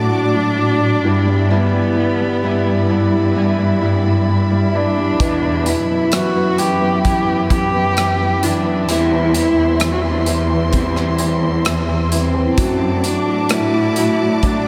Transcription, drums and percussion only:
5.20 kick, closed hi-hat
5.66 closed hi-hat
6.12 cross-stick, closed hi-hat
6.58 closed hi-hat
7.05 kick, closed hi-hat
7.50 kick, closed hi-hat
7.97 cross-stick, closed hi-hat
8.43 closed hi-hat
8.89 closed hi-hat
9.34 closed hi-hat
9.80 cross-stick, closed hi-hat
10.26 closed hi-hat
10.73 kick, closed hi-hat
10.96 cross-stick
11.18 closed hi-hat
11.65 cross-stick, closed hi-hat
12.12 closed hi-hat
12.58 kick, closed hi-hat
13.04 closed hi-hat
13.49 cross-stick, closed hi-hat
13.96 closed hi-hat
14.43 kick, closed hi-hat

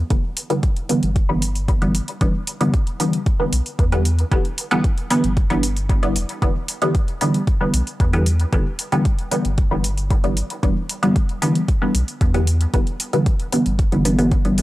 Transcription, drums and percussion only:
0.10 kick, closed hi-hat
0.37 open hi-hat
0.50 closed hi-hat
0.63 kick, closed hi-hat
0.76 closed hi-hat
0.89 open hi-hat
1.03 closed hi-hat
1.16 kick, closed hi-hat
1.42 open hi-hat
1.55 open hi-hat
1.68 kick, closed hi-hat
1.82 closed hi-hat
1.95 open hi-hat
2.08 closed hi-hat
2.21 kick, closed hi-hat
2.47 open hi-hat
2.61 closed hi-hat
2.74 kick, closed hi-hat
2.87 closed hi-hat
3.00 open hi-hat
3.13 closed hi-hat
3.26 kick, closed hi-hat
3.53 open hi-hat
3.66 open hi-hat
3.79 kick, closed hi-hat
3.92 closed hi-hat
4.05 open hi-hat
4.19 closed hi-hat
4.32 kick, closed hi-hat
4.45 closed hi-hat
4.58 open hi-hat
4.71 closed hi-hat
4.84 kick, closed hi-hat
4.98 closed hi-hat
5.10 open hi-hat
5.24 closed hi-hat
5.37 kick, closed hi-hat
5.50 closed hi-hat
5.63 open hi-hat
5.77 open hi-hat
5.89 kick, closed hi-hat
6.03 closed hi-hat
6.16 open hi-hat
6.29 closed hi-hat
6.42 kick, closed hi-hat
6.68 open hi-hat
6.82 closed hi-hat
6.95 kick, closed hi-hat
7.08 closed hi-hat
7.21 open hi-hat
7.34 closed hi-hat
7.47 kick, closed hi-hat
7.74 open hi-hat
7.87 open hi-hat
8.00 kick, closed hi-hat
8.13 closed hi-hat
8.26 open hi-hat
8.40 closed hi-hat
8.53 kick, closed hi-hat
8.79 open hi-hat
8.92 closed hi-hat
9.05 kick, closed hi-hat
9.19 closed hi-hat
9.31 open hi-hat
9.45 closed hi-hat
9.58 kick, closed hi-hat
9.84 open hi-hat
9.97 open hi-hat
10.10 kick, closed hi-hat
10.24 closed hi-hat
10.37 open hi-hat
10.50 closed hi-hat
10.63 kick, closed hi-hat
10.89 open hi-hat
11.03 closed hi-hat
11.16 kick, closed hi-hat
11.29 closed hi-hat
11.42 open hi-hat
11.55 closed hi-hat
11.68 kick, closed hi-hat
11.95 open hi-hat
12.08 open hi-hat
12.21 kick, closed hi-hat
12.34 closed hi-hat
12.47 open hi-hat
12.61 closed hi-hat
12.74 kick, closed hi-hat
12.87 closed hi-hat
13.00 open hi-hat
13.13 closed hi-hat
13.26 kick, closed hi-hat
13.40 closed hi-hat
13.52 open hi-hat
13.66 closed hi-hat
13.79 kick, closed hi-hat
13.92 closed hi-hat
14.05 open hi-hat
14.19 open hi-hat
14.31 kick, closed hi-hat
14.45 closed hi-hat
14.58 open hi-hat

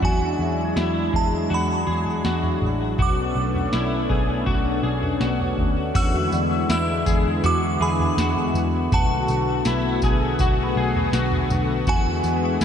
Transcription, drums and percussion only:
0.02 kick, floor tom
0.77 snare
1.14 kick
1.51 floor tom
2.06 floor tom
2.25 snare
2.43 floor tom
2.62 floor tom
2.98 kick, floor tom
3.54 floor tom
3.73 snare
4.10 kick
4.47 kick, floor tom
5.03 floor tom
5.21 snare
5.40 floor tom
5.58 kick, floor tom
5.95 kick, floor tom, crash, tambourine
6.32 tambourine
6.70 snare, tambourine
7.06 kick, tambourine
7.44 floor tom, tambourine
8.00 floor tom
8.18 snare, tambourine
8.36 floor tom
8.55 floor tom, tambourine
8.92 kick, floor tom, tambourine
9.28 tambourine
9.65 snare, tambourine
10.02 kick, tambourine
10.39 kick, floor tom, tambourine
10.95 floor tom
11.13 snare, tambourine
11.31 floor tom
11.50 floor tom, tambourine
11.87 kick, floor tom, tambourine
12.24 tambourine
12.61 snare, tambourine

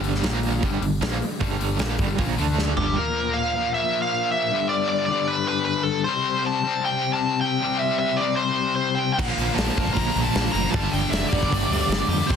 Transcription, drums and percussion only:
0.04 open hi-hat
0.15 snare
0.24 snare, open hi-hat
0.43 open hi-hat
0.63 kick, open hi-hat
0.82 open hi-hat
1.02 snare, open hi-hat
1.22 open hi-hat
1.41 kick, open hi-hat
1.61 open hi-hat
1.79 snare, open hi-hat
1.99 kick, open hi-hat
2.18 kick, open hi-hat
2.39 open hi-hat
2.58 snare
2.77 floor tom
9.19 kick, crash
9.38 open hi-hat
9.58 snare, open hi-hat
9.78 kick, open hi-hat
9.87 kick
9.96 kick, open hi-hat
10.16 open hi-hat
10.35 snare, open hi-hat
10.55 open hi-hat
10.74 kick, open hi-hat
10.93 open hi-hat
11.13 snare, open hi-hat
11.33 kick, open hi-hat
11.43 kick
11.53 kick, open hi-hat
11.73 open hi-hat
11.92 snare, open hi-hat
12.11 open hi-hat
12.30 kick, crash

